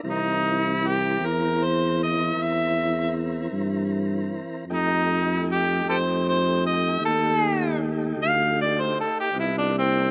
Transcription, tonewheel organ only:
0.04 E3 C4 A#4
4.70 A3 D#4 G4
9.34 B3 D#4 F4
9.71 A#3 D4 E4

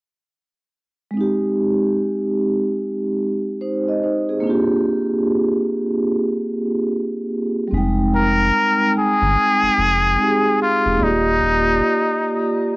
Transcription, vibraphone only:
1.11 G#3 C4
1.17 D#4 G4
3.61 D#4 C5
3.88 D#5
4.03 D#4 C5
4.29 C4 G#4
4.40 A#3 D4
4.47 F4 G4
7.68 G3 C4
7.74 G#3 D#4 G5
10.17 G#3 C4 D#4
10.21 G4
10.28 G#4
10.96 A#3 D5
11.03 F4 G4

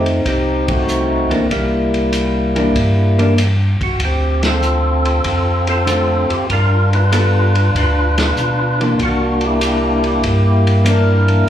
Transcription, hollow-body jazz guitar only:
1.30 E3 A#3 D4
2.56 E3 A#3 D4
3.18 E3 A#3 D4
5.86 D3 A3 C4 F4
7.12 G3 B3 F4 A4
8.81 E3 A#3 D4
10.84 E3 A#3 D4

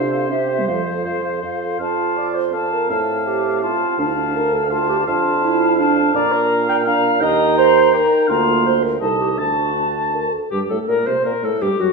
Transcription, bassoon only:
Already playing: C3
0.30 C3
0.68 F2
1.05 F2
1.43 F2
1.80 F2
2.89 A2
3.99 D2
5.07 F2
6.14 A#2
7.21 D#2
8.30 D2
9.01 C2
9.38 D2
10.52 G2
10.71 A2
10.89 A#2
11.07 C3
11.26 A#2
11.43 A2
11.62 G2
11.80 F#2

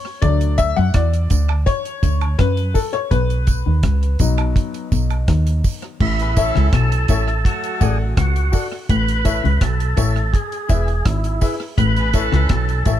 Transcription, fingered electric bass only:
0.23 D2
0.79 F#2
0.95 E2
1.32 D2
2.04 D2
2.40 F#2
3.12 B1
3.67 D#2
3.84 C#2
4.21 B1
4.93 B1
5.29 D#2
6.01 A1
6.57 C#2
6.74 B1
7.10 A1
7.82 A1
8.18 C#2
8.90 A1
9.45 C#2
9.62 B1
9.98 A1
10.70 E1
11.06 G#1
11.79 A1
12.33 C#2
12.51 B1
12.87 A1

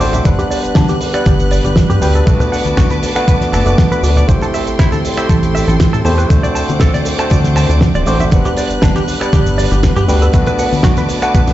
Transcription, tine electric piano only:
0.00 A3 C4 D4 F#4 C5
0.24 G3 B3 D4 B4 F#5
1.13 G3 B3 D4 B4 F#5
2.01 G3 B3 D4 F#4 B4
2.25 A3 B3 D4 F#4 B4
3.15 A3 B3 D4 F#4 B4
3.65 A3 B3 D4 F#4 B4
4.27 A3 C4 E4 G4 C5
5.17 A3 C4 E4 G4 C5
6.05 A3 C4 E4 G4 C5
6.29 A3 C4 D4 F#4 C5
7.18 A3 C4 D4 F#4 C5
8.07 A3 C4 D4 F#4 C5
8.31 G3 B3 D4 B4 F#5
9.20 G3 B3 D4 B4 F#5
10.08 G3 B3 D4 F#4 B4
10.33 A3 B3 D4 F#4 B4
11.22 A3 B3 D4 F#4 B4

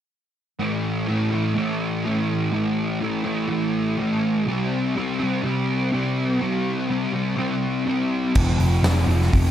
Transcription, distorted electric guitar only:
0.59 A2 E3 A3
1.06 A2 E3 A3
1.31 E3 A3
1.55 A2 E3 A3
2.04 A2 E3 A3
2.52 A2 E3 A3
3.00 A2 E3 A3
3.24 E3 A3
3.49 A2 E3 A3
3.98 A2 E3 A3
4.46 C3 G3 C4
4.96 C3 G3 C4
5.19 G3 C4
5.42 C3 G3 C4
5.92 C3 G3 C4
6.40 C3 G3 C4
6.88 C3 G3 C4
7.13 G3 C4
7.36 C3 G3 C4
7.86 C3 G3 C4
8.36 F2 C3 F3
8.83 F2 C3 F3
9.07 C3 F3
9.31 F2 C3 F3

